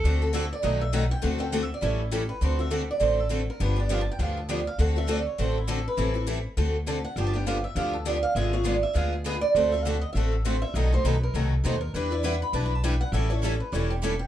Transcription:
X:1
M:4/4
L:1/16
Q:"Swing" 1/4=202
K:Dmix
V:1 name="Steel-string acoustic guitar"
z4 e2 d2 ^d2 e2 f2 g2 | f2 g2 (3f2 e2 d2 ^c2 E2 G2 B2 | c2 e2 f2 d2 c2 A2 z2 _B2 | B2 d2 (3=f2 a2 g2 f2 A2 d2 f2 |
f2 e2 d2 ^c2 =c2 E2 A2 B2- | B4 z8 a2 f2 | (3g2 a2 g2 =f2 e2 f2 A2 d2 f2 | e2 ^c2 d2 e2 ^e2 ^G2 B2 d2 |
c2 e2 f2 _e2 =e2 A2 c2 e2 | ^d2 c2 B2 _B2 A2 z2 c2 B2 | B2 d2 f2 b2 (3a2 b2 a2 g2 f2 | e2 ^c2 A2 B2 c2 G2 z2 g2 |]
V:2 name="Violin"
A3 z12 z | z16 | z16 | z16 |
z16 | z16 | z16 | z16 |
z16 | z16 | z16 | z16 |]
V:3 name="Steel-string acoustic guitar"
[D,A,CFA]2 [CFA]2 [D,A,CFA]2 z2 [B,,F,A,^DF]2 z2 [B,,F,A,DF]2 z2 | [D,A,CFA]2 [CFA]2 [D,A,CFA]2 z2 [E,G,^CEA]2 z2 [E,G,CEA]2 z2 | [D,A,CFA]2 [CFA]2 [D,A,CFA]2 z2 [D,A,CFA]2 z2 [D,A,CFA]2 z2 | [D,=F,B,DG]2 [B,DG]2 [D,F,B,DG]2 z2 [D,F,B,DG]2 z2 [D,F,B,DG]2 z2 |
[D,A,CFA]2 [CFA]2 [D,A,CFA]2 z2 [D,A,CFA]2 z2 [D,A,CFA]2 z2 | [E,G,CEA]2 [CEA]2 [E,G,CEA]2 z2 [D,A,CFA]2 z2 [D,A,CFA]2 z2 | [D,=F,B,DG]2 [B,DG]2 [D,F,B,DG]2 z2 [D,F,B,DG]2 z2 [D,F,B,DG]2 z2 | [D,^G,B,^E^G]2 [B,EG]2 [D,G,B,EG]2 z2 [D,G,B,EG]2 z2 [D,G,B,EG]2 z2 |
[D,A,CFA]2 [CFA]2 [D,A,CFA]2 z2 [D,A,CFA]2 z2 [D,A,CFA]2 z2 | [B,,F,A,^DF]2 [A,DF]2 [B,,F,A,DF]2 z2 [B,,F,A,DF]2 z2 [B,,F,A,DF]2 z2 | [E,G,DEB]2 [DEB]2 [E,G,DEB]2 z2 [E,G,DEB]2 z2 [E,G,DEB]2 z2 | [E,G,^CEA]2 [CEA]2 [E,G,CEA]2 z2 [E,G,CEA]2 z2 [E,G,CEA]2 z2 |]
V:4 name="Steel-string acoustic guitar"
[D,A,CFA]2 z2 [D,A,CFA]2 z2 [B,,^D,F,B,^DA]2 z2 [B,,D,F,B,DA]2 z2 | [D,A,CFA]2 z2 [D,A,CFA]2 z2 [E,G,^CEA]2 z2 [E,G,CEA]2 z2 | [D,A,CFA]2 z2 [D,A,CFA]2 z2 [D,A,CFA]2 z2 [D,A,CFA]2 z2 | [D,=F,B,DG]2 z2 [D,F,B,DG]2 z2 [D,F,B,DG]2 z2 [D,F,B,DG]2 z2 |
[D,A,CFA]2 z2 [D,A,CFA]2 z2 [D,A,CFA]2 z2 [D,A,CFA]2 z2 | [E,G,CEA]2 z2 [E,G,CEA]2 z2 [D,A,CFA]2 z2 [D,A,CFA]2 z2 | [D,=F,B,DG]2 z2 [D,F,B,DG]2 z2 [D,F,B,DG]2 z2 [D,F,B,DG]2 z2 | [D,^G,B,^E^G]2 z2 [D,G,B,EG]2 z2 [D,G,B,EG]2 z2 [D,G,B,EG]2 z2 |
[D,A,CFA]2 z2 [D,A,CFA]2 z2 [D,A,CFA]2 z2 [D,A,CFA]2 z2 | [B,,^D,F,B,^DA]2 z2 [B,,D,F,B,DA]2 z2 [B,,D,F,B,DA]2 z2 [B,,D,F,B,DA]2 z2 | [E,G,DEB]2 z2 [E,G,DEB]2 z2 [E,G,DEB]2 z2 [E,G,DEB]2 z2 | [E,G,^CEA]2 z2 [E,G,CEA]2 z2 [E,G,CEA]2 z2 [E,G,CEA]2 z2 |]
V:5 name="Upright bass" clef=bass
D,,8 B,,,8 | D,,8 A,,,8 | D,,8 A,,,8 | G,,,8 D,,8 |
D,,8 A,,,8 | A,,,8 D,,8 | G,,,8 D,,8 | ^G,,,8 D,,8 |
D,,8 A,,,8 | B,,,4 B,,,4 C,,4 ^D,,4 | E,,8 B,,,8 | A,,,8 E,,,8 |]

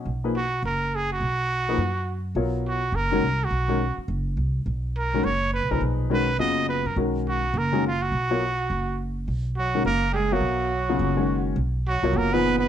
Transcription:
X:1
M:4/4
L:1/16
Q:"Swing" 1/4=208
K:Blyd
V:1 name="Muted trumpet"
z4 F4 A4 G2 F2- | F12- F2 z2 | z4 F4 A6 F2- | F6 z8 z2 |
z4 A4 c4 B2 A2 | z4 B4 d4 B2 A2 | z4 F4 A4 E2 F2- | F12 z4 |
z4 F4 A3- A/2 =G/2 ^G2 F2- | F12- F2 z2 | z4 F4 A2 B4 B2 |]
V:2 name="Grand piano"
z2 [E,A,DGB]2 z12 | z6 [E,A,DGB]2 z8 | [F,B,EAc]6 z4 [D,G,CFA]2 z4 | z2 [D,G,CFA]2 z12 |
z6 [D,G,CFA]2 z6 [A,,E,DGB]2- | [A,,E,DGB]4 [D,G,CFA]2 z2 [C,F,B,EG]6 z2 | [D,G,CFA]6 z4 [D,G,CFG]2 z4 | z2 [F,B,EAc]2 z12 |
z6 [D,G,CFA]2 z6 [F,B,Ace]2- | [F,B,Ace]4 z2 [C,F,B,EG]4 [D,G,CFc]6 | z6 [F,B,EAc]4 [A,,E,DGB]6 |]
V:3 name="Alto saxophone" clef=bass
z16 | z16 | z16 | z16 |
z16 | z16 | z16 | z16 |
z4 F,4 A,3- A,/2 =G,/2 ^G,2 F,2- | F,12- F,2 z2 | z4 F,4 A,2 B,4 B,2 |]
V:4 name="Upright bass" clef=bass
B,,,8 F,,,8 | B,,,8 F,,8 | B,,,8 F,,,4 =C,,4 | B,,,6 z2 F,,,4 =C,,4 |
B,,,8 F,,,4- (3F,,,2 B,,,2 =C,,2 | B,,,8 F,,,6 F,,2 | B,,,8 F,,,8 | B,,,8 F,,,8 |
B,,,8 F,,,8 | B,,,8 F,,,8 | B,,,6 =C,,2 F,,,8 |]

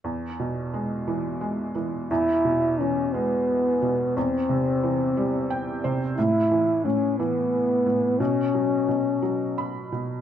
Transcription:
X:1
M:6/8
L:1/8
Q:3/8=59
K:E
V:1 name="Trombone"
z6 | E2 C B,3 | =C4- C z | E2 C B,3 |
C4- C z |]
V:2 name="Felt piano"
z6 | z6 | z4 =g =c | z6 |
z4 b2 |]
V:3 name="Felt piano" clef=bass
E,, B,, G, E, G, E, | E,, B,, E, G,2 B,, | E,, =C, E, =G,2 C, | A,, E, A,, E,2 A,, |
B,, F, B,, F,2 B,, |]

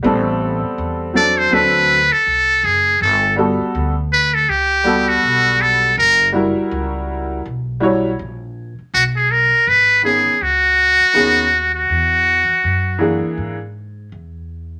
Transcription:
X:1
M:4/4
L:1/16
Q:"Swing 16ths" 1/4=81
K:F#mix
V:1 name="Muted trumpet"
z6 =d =c B3 =A3 G2 | =A2 z4 B A =G3 F3 A2 | A2 z12 z2 | F G A2 B2 G2 F6- F F- |
F6- F z8 z |]
V:2 name="Upright piano"
[=G,B,=C=A]6 [F,C=DA]2 [F,CDA]2 z6 | z2 [=G,B,F=A]2 z6 [G,B,FA]6 | z2 [=G,EFA]6 z2 [G,EFc]2 z4 | z6 [D,B,CG]2 z4 [D,B,CG]2 z2 |
z6 [E,A,=DG]2 z8 |]
V:3 name="Upright bass" clef=bass
=A,,,3 z E,,4 =D,,3 z =C,,2 F,,,2 | =G,,,3 z =D,,4 C,,4 B,,,4 | F,,,3 z C,,4 B,,,4 A,,,3 z | B,,,3 z G,,,3 z C,,3 z D,,4 |
E,,3 z F,,3 z G,,4 E,,4 |]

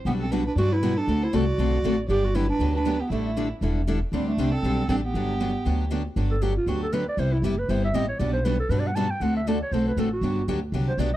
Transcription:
X:1
M:4/4
L:1/8
Q:"Swing" 1/4=236
K:G
V:1 name="Violin"
G A B B d B2 A- | A c d4- d z | d d B B2 B2 G | E3 z4 z |
D D2 A3 A G- | G6 z2 | z8 | z8 |
z8 | z8 | z8 |]
V:2 name="Clarinet"
B, C D D F E2 D- | D E F4- F z | G F E D2 D2 B, | A,3 z4 z |
G, A,2 C3 C B,- | B,6 z2 | z A G =F ^F A B d | c E G B c e _e ^c |
d c B A (3B d f a g | f e d ^c =c B A F- | F2 z3 c d z |]
V:3 name="Steel-string acoustic guitar"
[B,,G,B,DF] z [B,,G,B,DF] z [B,,G,B,DF] z [B,,G,B,DF] z | [D,A,CFA] z [D,A,CFA] z [D,A,CFA] z [D,A,CFA] z | [D,F,B,DG] z [D,F,B,DG] z [D,F,B,DG] z [D,F,B,DG] z | [D,G,DEA] z [D,G,DEA] z [D,G,DEA] z [D,G,DEA] z |
[D,G,CDG] z [D,G,CDG] z [D,G,CDG] z [D,G,CDG] z | [D,F,B,DG] z [D,F,B,DG] z [D,F,B,DG] z [D,F,B,DG] z | [D,F,B,DG] z [D,F,B,DG] z [D,F,B,DG] z [D,F,B,DG] z | [C,G,B,EG] z [C,G,B,EG] z [C,G,B,EG] z [C,G,B,EG] z |
[B,,G,B,DF] z [B,,G,B,DF] z [B,,G,B,DF] z [B,,G,B,DF] z | [D,A,CFA] z [D,A,CFA] z [D,A,CFA] z [D,A,CFA] z | [D,F,B,DG] z [D,F,B,DG] z [D,F,B,DG] z [D,F,B,DG] z |]
V:4 name="Steel-string acoustic guitar"
[B,,F,B,DGB] z [B,,F,B,DGB] z [B,,F,B,DGB] z [B,,F,B,DGB] z | [D,A,CFA] z [D,A,CFA] z [D,A,CFA] z [D,A,CFA] z | [D,F,B,DG] z [D,F,B,DG] z [D,F,B,DG] z [D,F,B,DG] z | [D,G,DEA] z [D,G,DEA] z [D,G,DEA] z [D,G,DEA] z |
[D,G,CDG] z [D,G,CDG] z [D,G,CDG] z [D,G,CDG] z | [D,F,B,DG] z [D,F,B,DG] z [D,F,B,DG] z [D,F,B,DG] z | [D,F,B,DG] z [D,F,B,DG] z [D,F,B,DG] z [D,F,B,DG] z | [C,G,B,EG] z [C,G,B,EG] z [C,G,B,EG] z [C,G,B,EG] z |
[B,,F,B,DGB] z [B,,F,B,DGB] z [B,,F,B,DGB] z [B,,F,B,DGB] z | [D,A,CFA] z [D,A,CFA] z [D,A,CFA] z [D,A,CFA] z | [D,F,B,DG] z [D,F,B,DG] z [D,F,B,DG] z [D,F,B,DG] z |]
V:5 name="Upright bass" clef=bass
B,,,4 G,,4 | D,,2 C,,2 B,,,2 A,,,2 | G,,,4 D,,4 | A,,,4 E,,,4 |
D,,2 C,,2 B,,,2 A,,,2 | G,,,4 D,,4 | G,,,4 D,,4 | C,,2 F,,,2 G,,,2 A,,,2 |
B,,,4 G,,4 | D,,4 B,,,2 A,,,2 | G,,,2 D,,2 C,,2 B,,,2 |]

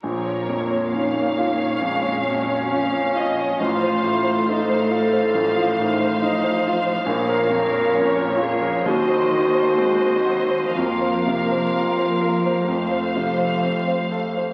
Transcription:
X:1
M:4/4
L:1/16
Q:1/4=67
K:Bbm
V:1 name="Violin section"
d4 f8 f2 e2 | f4 f12- | f4 d4 c8 | f8 f8 |]
V:2 name="Violin section"
B4 d12 | c4 c2 c8- c2 | d8 e4 e4 | B8 c8 |]
V:3 name="Grand piano"
B,,, d F,, d D d F d F,, d F,, d D d F d | =A,,, c =A,, c E c F c A,,, F A,, c E c F c | B,,, B F,, B D B F B E,, c E, c C c G c | F,, c C, c C c B c F,, c C, c C c =A c |]
V:4 name="Clarinet"
F4 E4 D8 | F4 =A8- A2 z2 | B6 A2 G8 | F12- F2 z2 |]
V:5 name="Viola section" clef=bass
F,2 B,6 A,2 G,2 F,4 | F,2 =A,6 F,2 E,2 F,4 | F,2 F,6 G,2 B,2 A,2 G,2 | B,8 =A,8 |]
V:6 name="Cello section" clef=bass
B,,16 | =A,,16 | B,,8 E,,8 | F,,16 |]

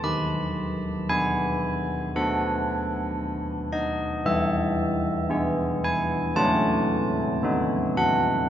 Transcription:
X:1
M:4/4
L:1/8
Q:1/4=57
K:Bmix
V:1 name="Church bells"
b2 g2 f3 d | e3 g a3 f |]
V:2 name="Church bells"
D,2 B,2 [B,A]4 | E,2 [B,G]2 [A,CF]2 [B,DF]2 |]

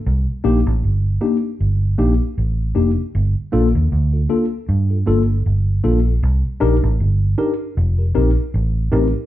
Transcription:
X:1
M:4/4
L:1/16
Q:"Swing 16ths" 1/4=78
K:Cdor
V:1 name="Tine electric piano"
z2 [B,DEG] z3 [B,DEG] z3 [B,DEG] z3 [B,DEG] z | z2 [B,DFA] z2 [FA] [B,DFA] z2 [FA] [B,DFA] z3 [B,DFA] [FA] | z2 [DEGB] z3 [DEGB] z2 [GB] [CEGB] z3 [CEGB] z |]
V:2 name="Fingered electric bass" clef=bass
C,, z B,,, A,,, G,,,2 z2 G,,,2 B,,, z A,,,2 F,,, z | G,,, z B,,, E,, D,,2 z2 G,,2 G,,,2 G,,,2 B,,,2 | C,, z B,,, A,,, G,,,2 z2 F,,,2 B,,, z A,,,2 A,,, z |]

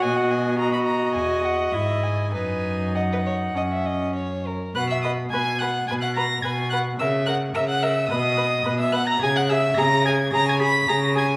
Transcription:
X:1
M:4/4
L:1/16
Q:1/4=107
K:B
V:1 name="Violin"
g f g2 a b a2 g2 f2 e2 g2 | g4 f8 z4 | f' e' d'2 g'2 f'2 g' f' a'2 g'2 f'2 | e'2 f'2 e' f' e'2 d'4- d' e' f' a' |
g' f' e'2 a'2 g'2 a' g' b'2 a'2 g'2 |]
V:2 name="Violin"
d4 d12 | B4 d B c2 d e d2 c2 A2 | f e d2 g2 f2 g f a2 g2 f2 | e2 f2 e f e2 d4- d e f a |
g f e2 a2 g2 a g b2 a2 g2 |]
V:3 name="Viola"
F4 F8 E4 | D8 C6 z2 | B2 B2 B2 B2 B2 B2 B2 B2 | A2 A2 A2 A2 B2 B2 B2 B2 |
G2 G2 G2 G2 G2 G2 G2 G2 |]
V:4 name="Cello" clef=bass
B,,8 E,,4 G,,4 | F,,8 F,,6 z2 | B,,4 B,,4 B,,4 B,,4 | C,4 C,4 B,,4 B,,4 |
C,4 C,4 C,4 C,4 |]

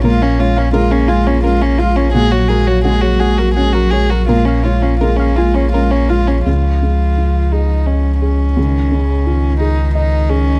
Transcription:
X:1
M:6/8
L:1/16
Q:3/8=57
K:Db
V:1 name="Synth pluck"
B f d f B f a d B d f d | G d B d G d g B G B d B | B f d f B f a d B d f d | z12 |
z12 |]
V:2 name="Felt piano"
[B,,F]2 D2 A,2 F2 D2 F2 | B,,2 G2 A,2 G2 D2 G2 | B,,2 F2 A,2 F2 D2 F2 | D,,2 A,2 F2 A2 e2 A2 |
D,,2 A,2 F2 A2 e2 A2 |]
V:3 name="Violin"
F D F D F D F D F D F D | A G A G A G A G A G A G | F D F D F D F D F D F D | F6 E2 D2 D2- |
D6 E2 E2 D2 |]
V:4 name="Cello" clef=bass
A, B, A, B, A, B, A, B, A, B, A, B, | A, G, A, G, A, G, A, G, A, G, A, G, | A, B, A, B, A, B, A, B, A, B, A, B, | F,12 |
E,2 D,2 E,8 |]
V:5 name="Sub bass" clef=bass
B,,,12- | B,,,12 | B,,,12 | D,,12- |
D,,12 |]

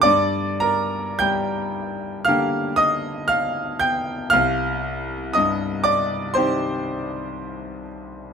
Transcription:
X:1
M:4/4
L:1/8
Q:1/4=59
K:Cdor
V:1 name="Grand piano"
[dd'] [Bb] [gg']2 [ff'] [ee'] [ff'] [gg'] | [ff']2 [ee'] [dd'] [cc']3 z |]
V:2 name="Grand piano" clef=bass
G,,2 G,2 [D,B,G]4 | C,,2 G,,2 [E,CG]4 |]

